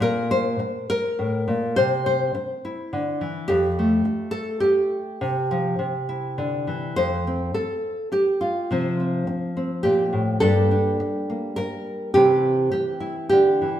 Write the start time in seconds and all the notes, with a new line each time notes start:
0.00 A#2 A#4
0.31 C5
0.59 muted nylon-string guitar stroke
0.90 A#4
1.19 A2
1.48 A#2
1.76 C3 C5
2.06 C5
2.35 muted nylon-string guitar stroke
2.65 E4
2.93 D3
3.21 E3
3.48 F2 G4
3.79 A3
4.05 muted nylon-string guitar stroke
4.31 A4
4.60 G4, muted nylon-string guitar stroke
5.21 C3
5.51 F3
5.79 C3
6.09 E4
6.38 D3
6.67 E3
6.96 F2 C5
7.27 C4
7.54 A4, muted nylon-string guitar stroke
8.12 G4, muted nylon-string guitar stroke
8.41 F4
8.71 C3 F3 C4
9.00 C4
9.27 muted nylon-string guitar stroke
9.57 C4
9.83 A#2 G4
10.13 A2
10.40 G2 G3 A#3 D4 A4
10.71 D4
11.00 muted nylon-string guitar stroke
11.30 A#3
11.56 A#4, muted nylon-string guitar stroke
12.14 C3 E3 C4 E4 G4
12.71 G4, muted nylon-string guitar stroke
13.00 E4
13.29 D3 G4
13.62 E3